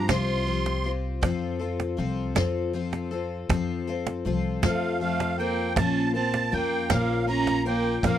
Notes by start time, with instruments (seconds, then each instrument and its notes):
0.08 upright bass C2, twelve-string acoustic guitar C3 F3 C4 F4 G4, fiddle F4, accordion C6, cajon bass, snare, cajon slap, closed hi-hat
0.46 twelve-string acoustic guitar F3 C4 F4 G4, closed hi-hat
0.66 cajon slap
0.84 twelve-string acoustic guitar C4 F4 G4, closed hi-hat
1.21 upright bass F2, twelve-string acoustic guitar F3 C4 F4 A4, kick, cajon bass, cajon slap, closed hi-hat
1.59 twelve-string acoustic guitar C4 F4 A4, closed hi-hat
1.80 cajon slap
1.97 upright bass C2, twelve-string acoustic guitar F3 C4 F4 A4, closed hi-hat
2.35 upright bass F2, twelve-string acoustic guitar F3 C4 F4 A4, cajon bass, cajon slap, snare, closed hi-hat
2.73 twelve-string acoustic guitar F3 C4 F4 A4, cajon slap, closed hi-hat
2.93 cajon slap
3.11 twelve-string acoustic guitar C4 F4 A4, closed hi-hat
3.49 upright bass F2, twelve-string acoustic guitar F3 C4 F4 A4, kick, cajon bass, cajon slap, closed hi-hat
3.87 twelve-string acoustic guitar C4 F4 A4, closed hi-hat
4.07 cajon slap
4.25 upright bass C2, twelve-string acoustic guitar F3 C4 F4 A4, closed hi-hat
4.62 upright bass F2, twelve-string acoustic guitar F3 C4 F4 A4, fiddle A3, accordion F5, cajon bass, snare, cajon slap, closed hi-hat
5.00 twelve-string acoustic guitar F3 C4 F4 A4, fiddle A3, accordion F5, cajon slap, closed hi-hat
5.20 cajon slap
5.38 fiddle A#3, twelve-string acoustic guitar C4 F4 A4, accordion G5, closed hi-hat
5.76 upright bass A#1, twelve-string acoustic guitar A#2 F3 A#3 C#4 F4 A#4, fiddle C#4, accordion A5, kick, cajon bass, cajon slap, closed hi-hat
6.14 twelve-string acoustic guitar A#3 F4 A#4, fiddle C4, accordion A5, closed hi-hat
6.34 cajon slap
6.51 upright bass F2, twelve-string acoustic guitar A#3 C#4 F4 A#4, fiddle A#3, accordion G5, closed hi-hat
6.90 upright bass A#1, twelve-string acoustic guitar A#2 F3 A#3 C#4 F4 A#4, fiddle A#3, accordion F5, cajon bass, snare, cajon slap, closed hi-hat
7.27 twelve-string acoustic guitar A#3 C#4 F4 A#4, fiddle C#4, accordion A#5, cajon slap, closed hi-hat
7.47 cajon slap
7.65 fiddle A#3, twelve-string acoustic guitar A#3 C#4 F4 A#4, accordion G5, closed hi-hat
8.03 upright bass A#1, twelve-string acoustic guitar A#2 F3 A#3 C#4 F4 A#4, fiddle A#3, accordion F5, kick, cajon bass, cajon slap, closed hi-hat